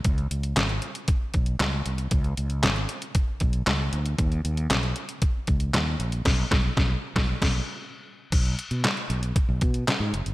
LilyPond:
<<
  \new Staff \with { instrumentName = "Fretless electric bass" } { \clef bass \time 4/4 \key b \mixolydian \tempo 4 = 116 cis,8 cis,8 gis,,8 r4 b,,8 cis,8 bis,,8 | cis,8 cis,8 gis,,8 r4 b,,8 cis,8 d,8 | dis,8 dis,8 b,,8 r4 cis,8 dis,8 ais,,8 | b,,8 b,,8 b,,8 r16 b,,8 b,,8 r4 r16 |
b,,8 r16 b,16 r8 b,,8 r16 b,,16 b,8 r16 gis,16 fis,,16 g,,16 | }
  \new DrumStaff \with { instrumentName = "Drums" } \drummode { \time 4/4 <hh bd>16 hh16 hh16 hh16 <hc hh sn>16 hh16 hh16 hh16 <hh bd>8 <hh bd>16 hh16 <hc hh sn>8 hh16 hh16 | <hh bd>16 hh16 hh16 hh16 <hc hh sn>16 hh16 hh16 hh16 <hh bd>8 <hh bd>16 hh16 <hc hh sn>8 hh16 hh16 | <hh bd>16 hh16 hh16 hh16 <hc hh sn>16 hh16 hh16 hh16 <hh bd>8 <hh bd>16 hh16 <hc hh sn>8 hh16 hh16 | <cymc bd sn>8 <bd sn>8 <bd sn>8. <bd sn>16 r16 <cymc bd sn>8. r4 |
<cymc hh bd>16 hh16 hh16 hh16 <hc hh sn>16 hh16 hh16 hh16 <hh bd>8 <hh bd>16 hh16 <hc hh sn>8 hh16 hh16 | }
>>